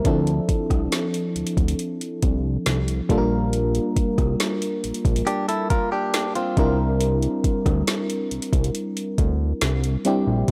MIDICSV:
0, 0, Header, 1, 5, 480
1, 0, Start_track
1, 0, Tempo, 869565
1, 27, Time_signature, 4, 2, 24, 8
1, 5802, End_track
2, 0, Start_track
2, 0, Title_t, "Clean electric guitar"
2, 0, Program_c, 0, 27
2, 2907, Note_on_c, 0, 67, 71
2, 2910, Note_on_c, 0, 62, 61
2, 3021, Note_off_c, 0, 67, 0
2, 3023, Note_off_c, 0, 62, 0
2, 3027, Note_on_c, 0, 69, 75
2, 3030, Note_on_c, 0, 64, 67
2, 3141, Note_off_c, 0, 69, 0
2, 3143, Note_off_c, 0, 64, 0
2, 3147, Note_on_c, 0, 70, 83
2, 3150, Note_on_c, 0, 65, 71
2, 3261, Note_off_c, 0, 70, 0
2, 3263, Note_off_c, 0, 65, 0
2, 3268, Note_on_c, 0, 67, 85
2, 3270, Note_on_c, 0, 62, 70
2, 3495, Note_off_c, 0, 67, 0
2, 3497, Note_off_c, 0, 62, 0
2, 3508, Note_on_c, 0, 65, 79
2, 3512, Note_on_c, 0, 60, 62
2, 3735, Note_off_c, 0, 65, 0
2, 3737, Note_off_c, 0, 60, 0
2, 5802, End_track
3, 0, Start_track
3, 0, Title_t, "FM electric piano"
3, 0, Program_c, 1, 5
3, 0, Control_c, 1, 64, 127
3, 24, Note_on_c, 1, 53, 85
3, 28, Note_on_c, 1, 60, 77
3, 31, Note_on_c, 1, 62, 79
3, 34, Note_on_c, 1, 64, 75
3, 35, Control_c, 1, 64, 0
3, 37, Note_on_c, 1, 69, 86
3, 114, Control_c, 1, 64, 127
3, 730, Note_off_c, 1, 53, 0
3, 732, Note_off_c, 1, 60, 0
3, 734, Note_off_c, 1, 62, 0
3, 735, Note_off_c, 1, 64, 0
3, 737, Note_off_c, 1, 69, 0
3, 1706, Note_on_c, 1, 55, 93
3, 1708, Note_on_c, 1, 58, 84
3, 1713, Note_on_c, 1, 62, 86
3, 1715, Control_c, 1, 64, 0
3, 1715, Note_on_c, 1, 65, 83
3, 1718, Note_on_c, 1, 69, 83
3, 1749, Note_off_c, 1, 69, 0
3, 1754, Note_on_c, 1, 70, 98
3, 1808, Control_c, 1, 64, 127
3, 2475, Note_off_c, 1, 55, 0
3, 2476, Note_off_c, 1, 58, 0
3, 2478, Note_off_c, 1, 62, 0
3, 2479, Note_off_c, 1, 65, 0
3, 2498, Note_off_c, 1, 70, 0
3, 3626, Note_on_c, 1, 55, 89
3, 3629, Note_on_c, 1, 60, 80
3, 3630, Note_on_c, 1, 62, 82
3, 3634, Control_c, 1, 64, 0
3, 3635, Note_on_c, 1, 64, 79
3, 3639, Note_on_c, 1, 70, 100
3, 3727, Control_c, 1, 64, 127
3, 4394, Note_off_c, 1, 55, 0
3, 4396, Note_off_c, 1, 60, 0
3, 4397, Note_off_c, 1, 62, 0
3, 4399, Note_off_c, 1, 64, 0
3, 4401, Note_off_c, 1, 70, 0
3, 5547, Note_on_c, 1, 55, 85
3, 5550, Note_on_c, 1, 60, 78
3, 5553, Note_on_c, 1, 62, 81
3, 5556, Note_on_c, 1, 64, 78
3, 5559, Note_on_c, 1, 67, 99
3, 5723, Note_off_c, 1, 55, 0
3, 5725, Note_off_c, 1, 60, 0
3, 5726, Note_off_c, 1, 62, 0
3, 5728, Note_off_c, 1, 64, 0
3, 5729, Note_off_c, 1, 67, 0
3, 5795, Control_c, 1, 64, 0
3, 5802, End_track
4, 0, Start_track
4, 0, Title_t, "Analog synth bass"
4, 0, Program_c, 2, 38
4, 29, Note_on_c, 2, 38, 107
4, 222, Note_off_c, 2, 38, 0
4, 390, Note_on_c, 2, 36, 91
4, 486, Note_off_c, 2, 36, 0
4, 749, Note_on_c, 2, 38, 49
4, 797, Note_off_c, 2, 38, 0
4, 868, Note_on_c, 2, 38, 88
4, 965, Note_off_c, 2, 38, 0
4, 1231, Note_on_c, 2, 36, 91
4, 1424, Note_off_c, 2, 36, 0
4, 1470, Note_on_c, 2, 36, 97
4, 1663, Note_off_c, 2, 36, 0
4, 1709, Note_on_c, 2, 34, 106
4, 2097, Note_off_c, 2, 34, 0
4, 2309, Note_on_c, 2, 36, 93
4, 2406, Note_off_c, 2, 36, 0
4, 2671, Note_on_c, 2, 34, 48
4, 2718, Note_off_c, 2, 34, 0
4, 2787, Note_on_c, 2, 34, 94
4, 2885, Note_off_c, 2, 34, 0
4, 3628, Note_on_c, 2, 36, 104
4, 4016, Note_off_c, 2, 36, 0
4, 4228, Note_on_c, 2, 38, 97
4, 4325, Note_off_c, 2, 38, 0
4, 4589, Note_on_c, 2, 36, 47
4, 4637, Note_off_c, 2, 36, 0
4, 4708, Note_on_c, 2, 36, 99
4, 4805, Note_off_c, 2, 36, 0
4, 5069, Note_on_c, 2, 38, 91
4, 5263, Note_off_c, 2, 38, 0
4, 5310, Note_on_c, 2, 36, 92
4, 5503, Note_off_c, 2, 36, 0
4, 5668, Note_on_c, 2, 34, 90
4, 5765, Note_off_c, 2, 34, 0
4, 5802, End_track
5, 0, Start_track
5, 0, Title_t, "Drums"
5, 27, Note_on_c, 9, 42, 61
5, 28, Note_on_c, 9, 36, 114
5, 82, Note_off_c, 9, 42, 0
5, 83, Note_off_c, 9, 36, 0
5, 149, Note_on_c, 9, 42, 46
5, 205, Note_off_c, 9, 42, 0
5, 269, Note_on_c, 9, 36, 86
5, 269, Note_on_c, 9, 42, 74
5, 324, Note_off_c, 9, 36, 0
5, 324, Note_off_c, 9, 42, 0
5, 388, Note_on_c, 9, 36, 83
5, 390, Note_on_c, 9, 37, 66
5, 390, Note_on_c, 9, 42, 49
5, 443, Note_off_c, 9, 36, 0
5, 445, Note_off_c, 9, 37, 0
5, 445, Note_off_c, 9, 42, 0
5, 508, Note_on_c, 9, 42, 65
5, 510, Note_on_c, 9, 38, 112
5, 563, Note_off_c, 9, 42, 0
5, 565, Note_off_c, 9, 38, 0
5, 630, Note_on_c, 9, 42, 45
5, 685, Note_off_c, 9, 42, 0
5, 750, Note_on_c, 9, 42, 56
5, 805, Note_off_c, 9, 42, 0
5, 809, Note_on_c, 9, 42, 54
5, 865, Note_off_c, 9, 42, 0
5, 867, Note_on_c, 9, 36, 94
5, 869, Note_on_c, 9, 42, 55
5, 922, Note_off_c, 9, 36, 0
5, 925, Note_off_c, 9, 42, 0
5, 929, Note_on_c, 9, 42, 56
5, 984, Note_off_c, 9, 42, 0
5, 988, Note_on_c, 9, 42, 66
5, 1044, Note_off_c, 9, 42, 0
5, 1111, Note_on_c, 9, 42, 49
5, 1166, Note_off_c, 9, 42, 0
5, 1228, Note_on_c, 9, 42, 64
5, 1229, Note_on_c, 9, 36, 85
5, 1283, Note_off_c, 9, 42, 0
5, 1284, Note_off_c, 9, 36, 0
5, 1468, Note_on_c, 9, 42, 71
5, 1470, Note_on_c, 9, 38, 103
5, 1524, Note_off_c, 9, 42, 0
5, 1525, Note_off_c, 9, 38, 0
5, 1590, Note_on_c, 9, 42, 49
5, 1645, Note_off_c, 9, 42, 0
5, 1708, Note_on_c, 9, 36, 96
5, 1710, Note_on_c, 9, 42, 55
5, 1763, Note_off_c, 9, 36, 0
5, 1765, Note_off_c, 9, 42, 0
5, 1949, Note_on_c, 9, 42, 62
5, 2004, Note_off_c, 9, 42, 0
5, 2069, Note_on_c, 9, 42, 46
5, 2124, Note_off_c, 9, 42, 0
5, 2188, Note_on_c, 9, 36, 85
5, 2189, Note_on_c, 9, 42, 74
5, 2243, Note_off_c, 9, 36, 0
5, 2244, Note_off_c, 9, 42, 0
5, 2308, Note_on_c, 9, 36, 88
5, 2309, Note_on_c, 9, 37, 63
5, 2309, Note_on_c, 9, 42, 48
5, 2363, Note_off_c, 9, 36, 0
5, 2364, Note_off_c, 9, 37, 0
5, 2364, Note_off_c, 9, 42, 0
5, 2428, Note_on_c, 9, 42, 69
5, 2430, Note_on_c, 9, 38, 115
5, 2483, Note_off_c, 9, 42, 0
5, 2485, Note_off_c, 9, 38, 0
5, 2550, Note_on_c, 9, 42, 51
5, 2605, Note_off_c, 9, 42, 0
5, 2671, Note_on_c, 9, 42, 58
5, 2726, Note_off_c, 9, 42, 0
5, 2729, Note_on_c, 9, 42, 55
5, 2784, Note_off_c, 9, 42, 0
5, 2787, Note_on_c, 9, 36, 96
5, 2789, Note_on_c, 9, 42, 59
5, 2842, Note_off_c, 9, 36, 0
5, 2844, Note_off_c, 9, 42, 0
5, 2849, Note_on_c, 9, 42, 54
5, 2904, Note_off_c, 9, 42, 0
5, 2908, Note_on_c, 9, 42, 67
5, 2963, Note_off_c, 9, 42, 0
5, 3029, Note_on_c, 9, 42, 50
5, 3084, Note_off_c, 9, 42, 0
5, 3148, Note_on_c, 9, 42, 66
5, 3149, Note_on_c, 9, 36, 85
5, 3203, Note_off_c, 9, 42, 0
5, 3204, Note_off_c, 9, 36, 0
5, 3388, Note_on_c, 9, 42, 67
5, 3389, Note_on_c, 9, 38, 111
5, 3443, Note_off_c, 9, 42, 0
5, 3445, Note_off_c, 9, 38, 0
5, 3508, Note_on_c, 9, 42, 49
5, 3563, Note_off_c, 9, 42, 0
5, 3627, Note_on_c, 9, 36, 105
5, 3627, Note_on_c, 9, 42, 58
5, 3682, Note_off_c, 9, 36, 0
5, 3682, Note_off_c, 9, 42, 0
5, 3867, Note_on_c, 9, 42, 62
5, 3922, Note_off_c, 9, 42, 0
5, 3988, Note_on_c, 9, 42, 48
5, 4043, Note_off_c, 9, 42, 0
5, 4108, Note_on_c, 9, 36, 88
5, 4109, Note_on_c, 9, 42, 74
5, 4163, Note_off_c, 9, 36, 0
5, 4164, Note_off_c, 9, 42, 0
5, 4227, Note_on_c, 9, 36, 88
5, 4228, Note_on_c, 9, 37, 67
5, 4229, Note_on_c, 9, 42, 51
5, 4282, Note_off_c, 9, 36, 0
5, 4284, Note_off_c, 9, 37, 0
5, 4284, Note_off_c, 9, 42, 0
5, 4347, Note_on_c, 9, 42, 68
5, 4348, Note_on_c, 9, 38, 115
5, 4402, Note_off_c, 9, 42, 0
5, 4404, Note_off_c, 9, 38, 0
5, 4469, Note_on_c, 9, 42, 49
5, 4525, Note_off_c, 9, 42, 0
5, 4589, Note_on_c, 9, 42, 58
5, 4644, Note_off_c, 9, 42, 0
5, 4649, Note_on_c, 9, 42, 58
5, 4704, Note_off_c, 9, 42, 0
5, 4707, Note_on_c, 9, 36, 91
5, 4709, Note_on_c, 9, 42, 56
5, 4762, Note_off_c, 9, 36, 0
5, 4765, Note_off_c, 9, 42, 0
5, 4770, Note_on_c, 9, 42, 60
5, 4825, Note_off_c, 9, 42, 0
5, 4828, Note_on_c, 9, 42, 68
5, 4884, Note_off_c, 9, 42, 0
5, 4950, Note_on_c, 9, 42, 50
5, 5005, Note_off_c, 9, 42, 0
5, 5069, Note_on_c, 9, 36, 84
5, 5069, Note_on_c, 9, 42, 72
5, 5124, Note_off_c, 9, 36, 0
5, 5124, Note_off_c, 9, 42, 0
5, 5307, Note_on_c, 9, 42, 74
5, 5308, Note_on_c, 9, 38, 101
5, 5362, Note_off_c, 9, 42, 0
5, 5363, Note_off_c, 9, 38, 0
5, 5430, Note_on_c, 9, 42, 49
5, 5485, Note_off_c, 9, 42, 0
5, 5546, Note_on_c, 9, 42, 57
5, 5602, Note_off_c, 9, 42, 0
5, 5802, End_track
0, 0, End_of_file